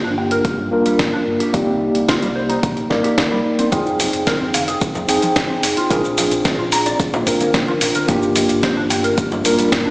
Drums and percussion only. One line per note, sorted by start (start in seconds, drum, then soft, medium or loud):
0.31 closed hi-hat soft
0.45 kick loud
0.45 closed hi-hat medium
0.86 closed hi-hat soft
0.99 kick loud
0.99 snare loud
0.99 closed hi-hat medium
1.40 closed hi-hat soft
1.54 kick loud
1.54 closed hi-hat medium
1.95 closed hi-hat soft
2.09 kick loud
2.09 snare loud
2.09 closed hi-hat medium
2.22 closed hi-hat soft
2.50 closed hi-hat soft
2.63 kick loud
2.63 closed hi-hat medium
2.77 closed hi-hat soft
2.90 kick medium
2.90 snare medium
3.04 closed hi-hat soft
3.18 kick loud
3.18 snare loud
3.18 closed hi-hat medium
3.59 closed hi-hat soft
3.72 kick loud
3.72 closed hi-hat medium
3.72 high bongo medium
3.72 shaker soft
3.86 shaker soft
4.00 open hi-hat loud
4.00 low conga medium
4.00 shaker medium
4.13 closed hi-hat soft
4.13 shaker soft
4.27 kick loud
4.27 snare loud
4.27 closed hi-hat medium
4.27 shaker soft
4.54 open hi-hat medium
4.54 high conga medium
4.54 shaker medium
4.68 closed hi-hat soft
4.68 shaker soft
4.81 kick loud
4.81 closed hi-hat medium
4.81 shaker soft
4.95 low conga medium
4.95 shaker soft
5.09 open hi-hat loud
5.09 shaker medium
5.22 closed hi-hat soft
5.22 shaker soft
5.36 kick loud
5.36 snare loud
5.36 closed hi-hat medium
5.36 shaker soft
5.63 open hi-hat loud
5.63 shaker medium
5.77 closed hi-hat soft
5.77 shaker soft
5.90 kick loud
5.90 closed hi-hat medium
5.90 high bongo medium
5.90 shaker soft
6.04 shaker soft
6.18 open hi-hat loud
6.18 low conga medium
6.18 shaker medium
6.31 closed hi-hat soft
6.31 shaker soft
6.45 kick loud
6.45 snare loud
6.45 closed hi-hat medium
6.45 shaker soft
6.72 open hi-hat medium
6.72 shaker medium
6.86 closed hi-hat soft
6.86 high bongo soft
6.86 shaker soft
7.00 kick loud
7.00 closed hi-hat medium
7.00 shaker soft
7.13 low conga medium
7.13 shaker soft
7.27 kick medium
7.27 open hi-hat medium
7.27 shaker medium
7.41 closed hi-hat soft
7.41 high conga medium
7.41 shaker soft
7.54 kick loud
7.54 snare loud
7.54 closed hi-hat medium
7.54 shaker soft
7.68 high conga medium
7.81 open hi-hat loud
7.81 shaker medium
7.95 closed hi-hat medium
7.95 high conga medium
7.95 shaker soft
8.08 kick loud
8.08 closed hi-hat medium
8.08 high bongo medium
8.08 shaker soft
8.22 shaker soft
8.35 open hi-hat loud
8.35 low conga medium
8.35 shaker medium
8.49 closed hi-hat soft
8.49 shaker soft
8.63 kick loud
8.63 snare loud
8.63 closed hi-hat medium
8.63 shaker soft
8.90 open hi-hat medium
8.90 high conga medium
8.90 shaker medium
9.04 closed hi-hat medium
9.04 shaker soft
9.18 kick loud
9.18 closed hi-hat medium
9.18 shaker soft
9.31 low conga medium
9.31 shaker soft
9.45 open hi-hat loud
9.45 shaker medium
9.59 closed hi-hat medium
9.59 shaker soft
9.72 kick loud
9.72 snare loud
9.72 closed hi-hat medium
9.72 shaker soft